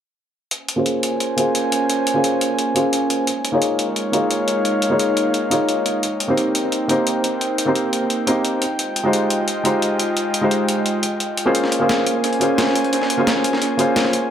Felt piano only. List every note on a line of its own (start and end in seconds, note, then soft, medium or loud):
0.76 1.35 A#3 medium
0.76 1.35 C#4 medium
0.76 1.36 F4 medium
0.76 1.36 G#4 medium
0.76 1.36 C5 medium
1.36 2.12 A#3 medium
1.36 2.13 C#4 medium
1.36 2.13 F4 medium
1.36 2.14 G#4 medium
1.36 2.14 C5 medium
2.14 2.73 A#3 medium
2.14 2.73 C#4 medium
2.14 2.74 F4 medium
2.14 2.74 G#4 medium
2.14 2.74 C5 medium
2.74 3.26 A#3 medium
2.74 3.26 C#4 medium
2.74 3.26 F4 medium
2.74 3.27 G#4 medium
2.74 3.27 C5 medium
3.52 4.10 A#3 medium
3.52 4.11 D#4 medium
3.52 4.12 F4 medium
3.52 4.12 G#4 medium
3.52 4.12 C#5 medium
4.12 4.88 A#3 medium
4.12 4.89 D#4 medium
4.12 4.89 F4 medium
4.12 4.89 G#4 medium
4.12 4.90 C#5 medium
4.90 5.48 A#3 medium
4.90 5.49 D#4 medium
4.90 5.49 F4 medium
4.90 5.50 G#4 medium
4.90 5.50 C#5 medium
5.50 6.01 A#3 medium
5.50 6.02 D#4 medium
5.50 6.02 F4 medium
5.50 6.02 G#4 medium
5.50 6.03 C#5 medium
6.28 6.86 A#3 medium
6.28 6.87 C4 medium
6.28 6.87 D#4 medium
6.28 6.88 G4 medium
6.28 6.88 C5 medium
6.88 7.64 A#3 medium
6.88 7.65 C4 medium
6.88 7.65 D#4 medium
6.88 7.65 G4 medium
6.88 7.66 C5 medium
7.66 8.24 A#3 medium
7.66 8.25 C4 medium
7.66 8.25 D#4 medium
7.66 8.26 G4 medium
7.66 8.26 C5 medium
8.27 8.60 A#3 medium
8.27 8.61 C4 medium
8.27 8.61 D#4 medium
8.27 8.61 G4 medium
8.27 8.61 C5 medium
9.04 9.62 G#3 medium
9.04 9.63 D#4 medium
9.04 9.63 F4 medium
9.04 9.63 G4 medium
9.04 9.64 C5 medium
9.64 10.40 G#3 medium
9.64 10.40 D#4 medium
9.64 10.41 F4 medium
9.64 10.41 G4 medium
9.64 10.42 C5 medium
10.41 11.00 G#3 medium
10.41 11.01 D#4 medium
10.41 11.01 F4 medium
10.41 11.01 G4 medium
10.41 11.02 C5 medium
11.45 11.78 A#3 medium
11.45 11.78 C#4 medium
11.45 11.79 F4 medium
11.45 11.79 G#4 medium
11.45 11.79 C5 loud
11.79 12.38 A#3 medium
11.79 12.39 C#4 medium
11.79 12.39 F4 medium
11.79 12.39 G#4 medium
11.79 12.40 C5 medium
12.40 13.16 A#3 medium
12.40 13.16 C#4 medium
12.40 13.17 F4 medium
12.40 13.17 G#4 medium
12.40 13.17 C5 medium
13.17 13.76 A#3 medium
13.17 13.76 C#4 medium
13.17 13.77 F4 medium
13.17 13.77 G#4 medium
13.17 13.78 C5 medium
13.77 14.29 A#3 medium
13.77 14.29 C#4 medium
13.77 14.30 F4 medium
13.77 14.30 G#4 medium
13.77 14.30 C5 medium